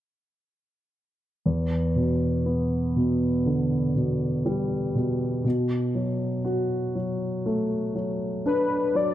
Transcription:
1.46 5.41 E2 soft
1.96 2.95 B2 soft
2.46 4.41 B3 soft
2.96 3.94 B2 soft
3.46 5.41 D3 soft
3.96 4.93 B2 soft
4.46 5.42 G3 soft
4.95 5.43 B2 soft
5.45 9.14 B2 soft
5.95 6.94 F#3 soft
6.45 8.41 F#4 soft
6.95 7.94 F#3 soft
7.46 9.14 A3 soft
7.95 8.93 F#3 soft
8.46 9.14 D4 soft
8.46 8.98 B4 medium
8.95 9.14 F#3 soft
8.95 9.14 D5 medium

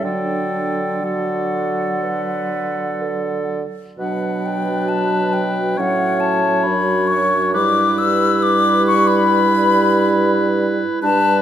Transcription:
0.03 3.63 D3 soft
0.03 1.03 F#3 soft
0.03 1.02 D4 soft
0.03 1.02 A4 soft
0.03 1.05 G5 medium
1.03 3.63 F#3 soft
1.03 1.98 F#4 soft
1.03 3.64 A4 soft
1.03 3.51 F#5 soft
2.03 3.03 B4 medium
3.02 3.82 A4 soft
3.99 5.75 B2 medium
3.99 5.76 F#3 medium
3.99 5.80 D4 medium
3.99 5.79 B4 medium
3.99 4.47 F#5 medium
4.46 4.90 G5 medium
4.89 5.34 A5 medium
5.33 5.81 G5 medium
5.78 6.68 A2 medium
5.78 7.52 F#3 medium
5.78 6.67 C#4 medium
5.78 7.54 C#5 medium
5.78 6.22 F#5 medium
6.20 6.65 A5 medium
6.63 7.58 F#2 medium
6.63 7.56 D4 medium
6.63 7.09 B5 medium
7.07 7.53 C#6 medium
7.54 10.86 G2 medium
7.54 10.86 G3 medium
7.54 11.02 E4 medium
7.54 10.99 B4 medium
7.54 8.00 D6 loud
7.98 8.44 E6 loud
8.43 8.86 D6 loud
8.87 9.09 C#6 loud
9.07 10.60 B5 loud
11.02 11.42 G2 medium
11.02 11.42 G3 medium
11.02 11.42 D4 medium
11.02 11.42 B4 medium
11.02 11.42 A5 loud

